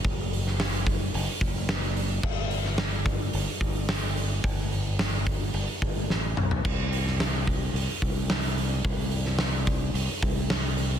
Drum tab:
CC |----------------|x---------------|----------------|x---------------|
HH |o-o-o-o-o-o-o-o-|--o-o-o-o-o-o-o-|o-o-o-o-o-o-----|--o-o-o-o-o-o-o-|
SD |---oo-------o---|---oo-------o---|----o-------o---|---oo-------o---|
T2 |----------------|----------------|--------------o-|----------------|
FT |----------------|----------------|---------------o|----------------|
BD |o-----o---o-----|o-----o---o-----|o-----o---o-----|o-----o---o-----|

CC |----------------|
HH |o-o-o-o-o---o-o-|
SD |---oo-------o---|
T2 |----------------|
FT |----------------|
BD |o-----o---o-----|